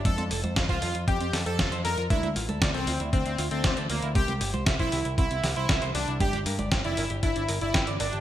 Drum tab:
HH |xxoxxxoxxxoxxxox|xxoxxxoxxxoxxxox|xxoxxxoxxxoxxxox|xxoxxxoxxxoxxxox|
SD |----o-----o-o---|----o-------o---|----o-----o-o---|----o-------o---|
CG |oo-o------------|oo-o------------|oo-o------------|oo-o------------|
BD |o---oo--o---o---|o---o---o---o---|o---oo--o---o---|o---o---o---o---|